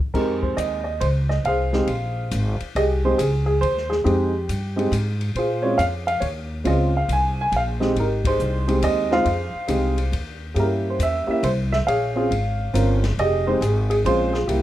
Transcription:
0.14 F2 G#3 C4 D#4 G4 A#4, kick, crash
0.42 C5, kick
0.57 D#2 D#5, kick, hi-hat pedal, ride
0.84 D#5
1.00 C#2 C5, kick, ride
1.29 D#5, snare
1.44 C2 G#4 C5 F5, kick, ride
1.73 G#3 C4 D#4 G4, snare
1.87 A#1, kick, ride
2.31 G#1, kick, hi-hat pedal, ride
2.60 muted upright bass stroke, ride
2.75 C2 G4 G#4 D#5, kick, ride
3.04 G#3 C4 D#4 G4 C5
3.18 C#2 G#4, kick, hi-hat pedal, ride
3.46 G#4
3.61 D#2 C5, kick, ride
3.77 snare
3.90 G#4, snare
4.04 F2 G#3 C4 D#4 G4, kick, ride
4.49 G2, kick, hi-hat pedal, ride
4.76 G#3 C4 D#4 G4, ride
4.92 G#2, kick, hi-hat pedal, ride
5.21 ride
5.35 A#2 F4 G#4 C5, kick, ride
5.63 G#3 C4 C#4 F4 C#5
5.78 F2 F5, kick, hi-hat pedal, ride
6.07 F5, ride
6.20 D#2 C#5, kick, ride
6.64 C#2 G#3 C4 C#4 F4 D#5, kick, ride
6.68 G#4 C5
6.97 F5
7.08 C2, kick, hi-hat pedal, ride
7.13 G#5
7.41 G#5
7.52 A#1, kick, ride
7.56 F5
7.80 G#3 C4 D#4 G4, snare
7.96 G#1, kick, ride
8.00 D#4 G4 A#4
8.25 D#4 G#4 C5, kick, ride
8.39 C2, hi-hat pedal
8.68 G#3 C4 D#4 G4, ride
8.82 D#2 D#5, kick, ride
9.11 G#3 C4 D#4 F4 G#4 C5 F5, snare
9.25 F2, kick, ride
9.55 muted upright bass stroke
9.68 C2 G#3 C4 D#4 G4, kick, hi-hat pedal, ride
9.98 ride
10.12 D#2, kick, ride
10.54 G2 A#3 C#4 E4 G4 G#4, kick, ride
10.59 E4 A#4
10.90 C5
10.99 E2 E5, kick, hi-hat pedal, ride
11.27 A#3 C#4 E4 G4, muted upright bass stroke
11.31 E5
11.43 C2 C5, kick, ride
11.72 E5, snare
11.87 A#1 G#4 C#5 F5, kick, ride
12.16 C4 C#4 F4 G#4
12.31 G#1, kick, ride
12.73 G1 C4 C#4 F4 A#4, kick, hi-hat pedal, ride
13.03 snare, ride
13.18 F1 G4 G#4 D#5, kick, ride
13.47 G#3 C4 D#4 G4 C5
13.61 G#1 G#4, kick, hi-hat pedal, ride
13.90 G#4, ride
14.05 A#1 G#3 C4 C#4 F4 G#4 C5, kick, ride
14.33 G#4, snare
14.48 C2 A#3 E4 G4, kick, ride

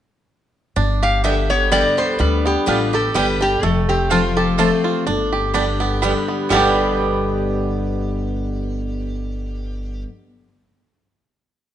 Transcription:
0.76 G1 G2 D4
1.03 G4 F5
1.24 D3 G3 B3 D4 G4 D5 E5 G5
1.50 B3 G4 C#5
1.71 D3 G3 B3 G4 D5 G5
1.97 B3 G4 C5
2.19 D2 D3 G3 B4
2.45 B3 G4
2.66 A1 D3 G3 B3 D4 F4 G4 D5 G5
2.93 B3 G4 A4
3.14 G1 D3 G3 B3 G4 B4 D5 G5
3.40 B3 D4 G4
3.63 F1 F2 A3 A4
3.89 C4 G4
4.10 F3 A3 C4 F4 C5 A5
4.37 G4 A4
4.58 F3 A3 C4 F4 C5 A5
4.84 F4
5.06 G1 G2 D4
5.33 G4
5.54 D3 G3 B3 D4 G4 D5 G5
5.80 B3 G4
6.02 D3 G3 B3 G4 D5 G5
6.28 B3
6.49 G1 G2 B2 D3 G3 B3 G4 D5 G5
6.54 D4 G4

